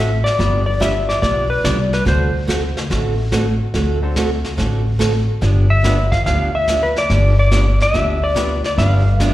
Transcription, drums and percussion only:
0.26 snare
0.39 brush sweep, kick, snare
0.81 kick, snare, hi-hat pedal
1.09 snare
1.22 brush sweep, kick, snare
1.64 kick, snare, hi-hat pedal
1.93 snare
2.06 brush sweep, kick, snare
2.48 kick, snare, hi-hat pedal
2.77 snare
2.90 brush sweep, kick, snare
3.32 kick, snare, hi-hat pedal
3.74 brush sweep, kick, snare
4.16 kick, snare, hi-hat pedal
4.44 snare
4.58 brush sweep, kick, snare
5.00 kick, snare, hi-hat pedal
5.42 brush sweep, kick, snare
5.84 kick, snare, hi-hat pedal
6.12 kick, snare
6.26 brush sweep, kick, snare
6.68 kick, snare, hi-hat pedal
6.96 snare
7.10 brush sweep, kick, snare
7.52 kick, snare, hi-hat pedal
7.80 snare
7.94 brush sweep, kick, snare
8.36 kick, snare, hi-hat pedal
8.64 snare
8.78 brush sweep, kick, snare
9.20 kick, snare, hi-hat pedal

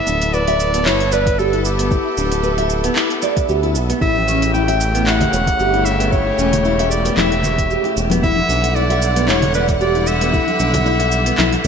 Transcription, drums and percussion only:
0.07 cabasa
0.22 open hi-hat, cabasa
0.34 cabasa
0.47 open hi-hat
0.60 cabasa
0.74 open hi-hat, cabasa
0.86 clap, cabasa
1.00 open hi-hat
1.12 cabasa
1.26 kick, open hi-hat, cabasa
1.39 cabasa
1.53 open hi-hat
1.65 cabasa
1.79 open hi-hat, cabasa
1.91 kick, cabasa
2.17 cabasa
2.32 open hi-hat, cabasa
2.44 cabasa
2.58 open hi-hat
2.70 cabasa
2.84 open hi-hat, cabasa
2.96 clap, cabasa
3.10 open hi-hat
3.22 cabasa
3.37 kick, open hi-hat, cabasa
3.49 cabasa
3.63 open hi-hat
3.75 cabasa
3.90 open hi-hat, cabasa
4.01 kick, cabasa
4.16 high conga
4.28 cabasa
4.42 open hi-hat, cabasa
4.54 cabasa
4.68 open hi-hat
4.81 cabasa
4.95 open hi-hat, cabasa
5.07 clap, cabasa
5.21 open hi-hat, low conga
5.33 cabasa
5.47 kick, open hi-hat, muted conga, cabasa
5.60 cabasa
5.74 open hi-hat
5.86 cabasa
6.00 open hi-hat, cabasa
6.12 kick, cabasa
6.39 cabasa
6.53 open hi-hat, low conga, cabasa
6.65 cabasa
6.79 open hi-hat
6.91 cabasa
7.05 open hi-hat, muted conga, cabasa
7.17 clap, high conga, cabasa
7.32 open hi-hat, muted conga
7.43 low conga, cabasa
7.58 kick, open hi-hat, cabasa
7.70 cabasa
7.84 open hi-hat, muted conga
7.97 cabasa
8.10 open hi-hat, muted conga, high conga, cabasa
8.23 kick, cabasa
8.36 high conga
8.49 cabasa
8.64 open hi-hat, cabasa
8.76 cabasa
8.90 open hi-hat
9.02 cabasa
9.16 open hi-hat, cabasa
9.29 clap, cabasa
9.42 open hi-hat, low conga
9.54 cabasa
9.68 kick, open hi-hat, muted conga, cabasa
9.81 cabasa
9.95 open hi-hat
10.07 cabasa
10.21 open hi-hat, cabasa
10.33 kick, cabasa
10.47 open hi-hat, high conga
10.59 cabasa
10.74 open hi-hat, low conga, cabasa
10.86 cabasa
11.00 open hi-hat
11.12 cabasa
11.26 open hi-hat, muted conga, cabasa
11.38 clap, high conga, cabasa
11.53 open hi-hat, muted conga

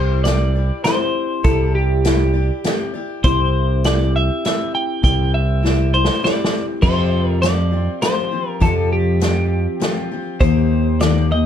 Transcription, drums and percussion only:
0.25 snare, closed hi-hat
0.84 snare, closed hi-hat
1.44 kick, closed hi-hat
2.05 snare, closed hi-hat
2.64 snare, closed hi-hat
3.24 kick, closed hi-hat
3.84 snare, closed hi-hat
4.45 snare, closed hi-hat
5.04 kick, closed hi-hat
5.65 snare
6.05 snare
6.25 snare
6.44 snare
6.83 kick, crash
7.43 snare, closed hi-hat
8.02 snare, closed hi-hat
8.62 kick, closed hi-hat
9.21 snare, closed hi-hat
9.81 snare, closed hi-hat
10.41 kick, closed hi-hat
11.00 snare, closed hi-hat

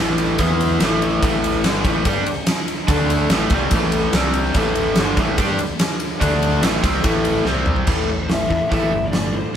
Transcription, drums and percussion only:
0.18 ride
0.38 kick, ride
0.61 ride
0.80 snare, ride
1.02 ride
1.23 kick, ride
1.44 ride
1.64 snare, ride
1.85 kick, ride
2.05 kick, ride
2.26 ride
2.47 snare, ride
2.68 ride
2.88 kick, ride
3.10 ride
3.30 snare, ride
3.50 kick, ride
3.71 kick, ride
3.92 ride
4.13 snare, ride
4.34 ride
4.54 kick, ride
4.75 ride
4.96 snare, ride
5.17 kick, snare, ride
5.38 kick, ride
5.59 ride
5.79 snare, ride
6.00 ride
6.21 kick, ride
6.42 ride
6.63 snare, ride
6.84 kick, ride
7.04 kick, ride
7.25 ride
7.45 snare
7.55 high tom
7.66 mid tom
7.76 floor tom
7.87 kick, crash
8.29 snare, open hi-hat
8.51 kick
8.71 kick, open hi-hat
9.13 snare, open hi-hat

